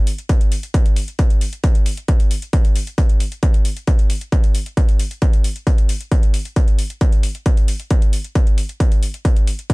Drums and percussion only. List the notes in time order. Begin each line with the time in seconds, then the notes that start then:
0.07 open hi-hat
0.18 closed hi-hat
0.29 kick, closed hi-hat
0.41 closed hi-hat
0.52 open hi-hat
0.63 closed hi-hat
0.74 kick, closed hi-hat
0.86 closed hi-hat
0.96 open hi-hat
1.08 closed hi-hat
1.19 kick, closed hi-hat
1.30 closed hi-hat
1.41 open hi-hat
1.53 closed hi-hat
1.64 kick, closed hi-hat
1.75 closed hi-hat
1.86 open hi-hat
1.97 closed hi-hat
2.08 kick, closed hi-hat
2.20 closed hi-hat
2.31 open hi-hat
2.42 closed hi-hat
2.53 kick, closed hi-hat
2.65 closed hi-hat
2.76 open hi-hat
2.87 closed hi-hat
2.98 kick, closed hi-hat
3.09 closed hi-hat
3.20 open hi-hat
3.32 closed hi-hat
3.43 kick, closed hi-hat
3.54 closed hi-hat
3.65 open hi-hat
3.77 closed hi-hat
3.87 kick, closed hi-hat
3.99 closed hi-hat
4.10 open hi-hat
4.21 closed hi-hat
4.32 kick, closed hi-hat
4.44 closed hi-hat
4.55 open hi-hat
4.66 closed hi-hat
4.77 kick, closed hi-hat
4.89 closed hi-hat
5.00 open hi-hat
5.11 closed hi-hat
5.22 kick, closed hi-hat
5.33 closed hi-hat
5.44 open hi-hat
5.56 closed hi-hat
5.67 kick, closed hi-hat
5.78 closed hi-hat
5.89 open hi-hat
6.01 closed hi-hat
6.12 kick, closed hi-hat
6.23 closed hi-hat
6.34 open hi-hat
6.45 closed hi-hat
6.56 kick, closed hi-hat
6.68 closed hi-hat
6.79 open hi-hat
6.90 closed hi-hat
7.01 kick, closed hi-hat
7.12 closed hi-hat
7.23 open hi-hat
7.35 closed hi-hat
7.46 kick, closed hi-hat
7.57 closed hi-hat
7.68 open hi-hat
7.80 closed hi-hat
7.90 kick, closed hi-hat
8.02 closed hi-hat
8.13 open hi-hat
8.24 closed hi-hat
8.35 kick, closed hi-hat
8.47 closed hi-hat
8.58 open hi-hat
8.69 closed hi-hat
8.80 kick, closed hi-hat
8.92 closed hi-hat
9.03 open hi-hat
9.14 closed hi-hat
9.25 kick, closed hi-hat
9.36 closed hi-hat
9.47 open hi-hat
9.59 closed hi-hat
9.70 kick, closed hi-hat